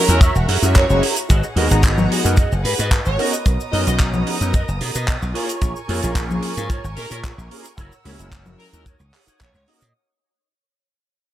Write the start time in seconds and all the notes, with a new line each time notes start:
Already playing: F#4 C#5 E5 A#5
0.08 E2 G#3 C#4 E4 F#4 A#4, closed hi-hat, cabasa
0.21 F#4 A#4 C#5 E5, kick, closed hi-hat, cabasa
0.35 E1 F#5, cabasa
0.48 F#2, muted clean electric guitar stroke, open hi-hat
0.62 F#2 G#3 C#4 E4 F#4 A#4 C#5 E5, closed hi-hat, cabasa
0.75 C#5 A#5, kick, clap, closed hi-hat, cabasa
0.89 F#1 G#3 C#4 E4 F#4 G#4 C#5, cabasa
1.02 muted clean electric guitar stroke, open hi-hat
1.16 closed hi-hat, cabasa
1.29 G#1 F#4 G#4 B4 D#5 F#5, kick, closed hi-hat, cabasa
1.43 cabasa
1.56 D#2 G#3 B3 D#4 F#4 G#4 A#4 B4 D#5, open hi-hat
1.70 G#1 G#3 B3 D#4 F#4 A#5, closed hi-hat, cabasa
1.83 kick, clap, closed hi-hat, cabasa
1.97 muted clean electric guitar stroke, low conga, cabasa
2.12 open hi-hat
2.24 F#2 G#3 B3 D#4 F#4 A#4, closed hi-hat, cabasa
2.37 F#4 G#4 B4 D#5, kick, closed hi-hat, cabasa
2.52 F#1, cabasa
2.64 G#2 B4, muted clean electric guitar stroke, open hi-hat
2.78 G#2 F#4 G#4 B4 D#5, closed hi-hat, cabasa
2.91 kick, clap, closed hi-hat, cabasa
3.06 G#1 C#5, cabasa
3.17 B3 C#4 D#4 F#4 A#4 B4 D#5 A#5 D#6, open hi-hat
3.33 closed hi-hat, cabasa
3.46 B1, kick, closed hi-hat, cabasa
3.60 cabasa
3.71 F#2 B3 C#4 D#4 F#4 A#4 B4 D#5, open hi-hat
3.86 B1 B3 C#4 D#4 F#4 D#5 A#5, closed hi-hat, cabasa
4.00 kick, clap, closed hi-hat, cabasa
4.13 muted clean electric guitar stroke, low conga, cabasa
4.27 open hi-hat
4.41 F#2 B3 C#4 D#4 F#4 A#4, closed hi-hat, cabasa
4.53 F#4 A#4 B4 D#5, kick, closed hi-hat, cabasa
4.68 F#1, cabasa
4.79 B2, muted clean electric guitar stroke, open hi-hat
4.94 B2 F#4 A#4 B4 D#5, closed hi-hat, cabasa
5.08 kick, clap, closed hi-hat, cabasa
5.22 B1, cabasa
5.33 A#3 C#4 F4 G#4 A#4 C#5 G#5 C#6, open hi-hat
5.49 closed hi-hat, cabasa
5.61 A#1, kick, closed hi-hat, cabasa
5.76 cabasa
5.88 F2 A#3 C#4 F4 G#4 A#4 C#5, open hi-hat
6.03 A#1 A#3 C#4 F4 G#4 A#4, closed hi-hat, cabasa
6.15 kick, clap, closed hi-hat, cabasa
6.29 muted clean electric guitar stroke, low conga, cabasa
6.43 open hi-hat
6.57 G#2 A#3 C#4 F4 G#4 A#4, closed hi-hat, cabasa
6.69 F4 G#4 A#4 C#5, kick, closed hi-hat, cabasa
6.84 G#1, cabasa
6.96 A#2 A#4, muted clean electric guitar stroke, open hi-hat
7.10 A#2 F4 G#4 A#4 C#5, closed hi-hat, cabasa
7.24 kick, clap, closed hi-hat, cabasa
7.38 A#1, cabasa
7.50 A#3 C#4 F4 G#4 A#4, muted clean electric guitar stroke, open hi-hat
7.65 closed hi-hat, cabasa
7.77 F#1 E4 F#4 A#4 C#5 F#5 E6, kick, closed hi-hat, cabasa
7.92 cabasa
8.04 C#2 G#3 C#4 E4 F#4 A#4 C#5, open hi-hat, high conga
8.18 F#1 G#3 C#4 E4 F#4 A#4, closed hi-hat, cabasa
8.32 kick, clap, closed hi-hat, cabasa
8.46 low conga, cabasa
8.59 A#4, open hi-hat
8.72 D#2 G#3 C#4 E4 F#4 A#4, closed hi-hat, cabasa
8.85 D#4 F#4 A#4 C#5 F#5 D#6, kick, closed hi-hat, cabasa
9.00 C#2, cabasa
9.13 muted clean electric guitar stroke, clap, open hi-hat
9.27 D#4 F#4 A#4 C#5, muted slap bass stroke, closed hi-hat, cabasa
9.40 A#1 C#5 F#5, kick, clap, closed hi-hat, cabasa
9.54 C#2 C#5, cabasa
9.67 A#3 C#4 D#4 F#4 A#4 D#5, muted clean electric guitar stroke, open hi-hat
9.81 A#2, closed hi-hat, cabasa